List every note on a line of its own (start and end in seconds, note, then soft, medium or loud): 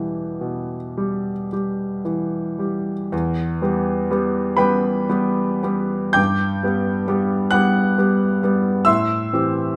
0.00 0.41 B2 soft
0.00 0.75 E3 soft
0.00 0.97 G3 soft
0.00 0.98 G4 soft
0.00 1.51 E5 soft
0.41 1.30 B2 soft
0.97 1.48 G3 soft
0.97 1.48 G4 soft
1.53 2.01 G3 soft
1.53 2.01 G4 soft
2.05 2.92 E3 soft
2.59 3.08 G3 soft
2.59 3.08 G4 soft
3.12 3.61 E2 medium
3.62 4.07 G3 soft
3.62 4.08 B3 soft
3.62 4.08 G4 soft
4.11 4.56 G3 soft
4.11 4.56 B3 soft
4.11 4.56 G4 soft
4.57 5.06 G3 soft
4.57 5.07 B3 soft
4.57 5.07 G4 soft
4.57 6.12 B4 medium
4.57 6.12 G5 medium
4.57 6.16 B5 medium
5.09 5.60 G3 soft
5.09 5.60 B3 soft
5.09 5.61 G4 medium
5.63 6.13 G3 soft
5.63 6.13 B3 soft
5.63 6.13 G4 soft
6.13 6.62 G2 medium
6.13 7.47 G5 medium
6.13 7.47 D6 medium
6.13 7.51 G6 medium
6.63 7.04 G3 soft
6.63 7.05 B3 soft
6.63 7.05 G4 soft
7.08 7.49 G3 soft
7.08 7.49 B3 soft
7.08 7.49 G4 soft
7.51 7.94 G3 soft
7.51 7.95 B3 soft
7.51 7.94 G4 medium
7.51 8.83 F#5 medium
7.51 8.86 F#6 medium
7.98 8.39 G3 soft
7.98 8.39 B3 soft
7.98 8.39 G4 soft
8.43 8.83 G3 soft
8.43 8.84 B3 soft
8.43 8.84 G4 soft
8.85 9.31 A2 medium
8.85 9.76 E5 medium
8.85 9.76 C6 medium
8.85 9.76 E6 medium
9.33 9.75 E3 soft
9.33 9.74 C4 soft
9.33 9.75 G4 soft